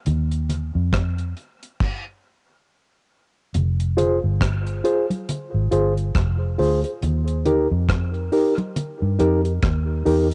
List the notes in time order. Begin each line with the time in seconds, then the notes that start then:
0.06 D#2, closed hi-hat, low conga
0.31 closed hi-hat
0.49 closed hi-hat, low conga
0.75 F2
0.93 kick, cross-stick, closed hi-hat
1.18 closed hi-hat
1.37 closed hi-hat
1.63 closed hi-hat
1.80 kick, crash
3.54 F1, closed hi-hat, low conga
3.80 closed hi-hat
3.97 F4 G#4 C5, closed hi-hat, low conga
4.24 G1
4.41 kick, cross-stick, closed hi-hat
4.67 closed hi-hat
4.84 F4 G#4 C5, closed hi-hat
5.10 closed hi-hat, high conga
5.29 closed hi-hat, low conga
5.54 G#1
5.71 G1 F4 G#4 C5, closed hi-hat
5.98 closed hi-hat
6.15 F1, kick, cross-stick, closed hi-hat
6.58 D2 F4 G#4 C5, open hi-hat
6.84 G#4 C5, closed hi-hat
7.02 D#2, closed hi-hat, low conga
7.28 closed hi-hat
7.45 D#4 G4 A#4, closed hi-hat, low conga
7.71 F2
7.89 kick, cross-stick, closed hi-hat
8.14 closed hi-hat
8.32 D#4 G4 A#4, open hi-hat
8.58 closed hi-hat, high conga
8.76 closed hi-hat, low conga
9.02 G2
9.19 F2 D#4 G4 A#4, closed hi-hat
9.45 closed hi-hat
9.62 D#2, kick, cross-stick, closed hi-hat
10.06 E2 D#4 G4 A#4, open hi-hat